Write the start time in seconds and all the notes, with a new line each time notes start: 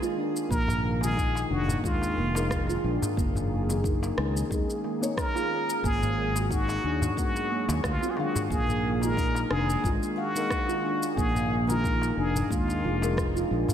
Already playing: D#3 A#3 G#4
0.01 G#3 D#4 F4, darbuka tek, shaker
0.17 D4
0.37 shaker
0.51 A#1 A#3 A#4, kick, shaker
0.68 darbuka dum, shaker
1.00 D#3 G#3 G#4, darbuka ka, shaker
1.04 F4
1.17 D#4, kick, shaker
1.35 darbuka tek, shaker
1.50 F1 D4 F#4
1.68 darbuka dum, shaker
1.83 D#2 G#3 D#4 F4, kick, shaker
2.02 darbuka ka, shaker
2.17 F1 A#3
2.35 G#3 D#4 A#4, darbuka ka, darbuka tek, shaker
2.51 kick, cross-stick, shaker
2.68 G#3 D#4 F4, shaker
2.84 A#1 D4
3.02 darbuka tek, darbuka dum, shaker
3.17 F#1 A#3, kick, shaker
3.35 darbuka dum, shaker
3.67 A#3 D#4, darbuka ka, shaker
3.71 G#4
3.84 D#4, kick, shaker
4.03 darbuka tek, shaker
4.18 C#2 C#4, cross-stick
4.37 shaker
4.50 D#2 G#3 A#3 D#4 G#4, kick, shaker
4.70 shaker
4.84 A#3, darbuka ka
5.01 A#3 D#4 C#5, shaker
5.17 A#4, kick, cross-stick, shaker
5.35 A#3 D#4 F4 G#4, darbuka tek, shaker
5.51 C#4
5.70 shaker
5.84 G#1 F#3 A#3 G#4, kick, shaker
6.02 darbuka ka, darbuka dum, shaker
6.34 A#3 F#4, darbuka ka, shaker
6.50 D#4 F#4, kick, shaker
6.69 darbuka tek, shaker
6.84 D#2 D4
7.02 darbuka dum, shaker
7.16 G#3 A#3 B3 F#4, kick, shaker
7.36 darbuka ka, shaker
7.51 A#3
7.68 D#2, darbuka ka, darbuka tek, shaker
7.78 F#4
7.83 D2 F4, kick, cross-stick, shaker
8.01 A#3 B3 F4 F#4, shaker
8.11 G#4
8.15 D#3 G#3 D4 F#4, darbuka tek
8.20 F5
8.35 darbuka tek, darbuka dum, shaker
8.49 A#1 D#3 A#3 G#4, kick, shaker
8.69 darbuka dum, shaker
9.00 G#3 D#4 F4 A#4, darbuka ka, shaker
9.17 D#4, kick, shaker
9.35 darbuka tek, shaker
9.50 F1 D4 G#4, cross-stick
9.70 shaker
9.83 G#1 G#3 D#4 F4, kick, shaker
10.03 shaker
10.16 F#4 F5, darbuka ka
10.35 G#3 D#4 A#4, shaker
10.50 kick, cross-stick, shaker
10.68 G#3 D#4 F4, darbuka tek, shaker
10.84 D4
11.03 shaker
11.16 A#1 A#3 G#4, kick, shaker
11.35 darbuka dum, shaker
11.67 D#3 G#3 F4 A#4, darbuka ka, shaker
11.84 D#4, kick, shaker
12.02 darbuka tek, shaker
12.17 F1 D4 G#4
12.36 darbuka dum, shaker
12.50 D#2 G#3 D#4 F4, kick, shaker
12.68 darbuka ka, shaker
12.84 F1 F4
13.01 G#3 D#4 A#4, darbuka ka, darbuka tek, shaker
13.17 kick, cross-stick, shaker
13.34 G#3 D#4 F4, shaker
13.51 A#1 D4
13.68 darbuka tek, darbuka dum, shaker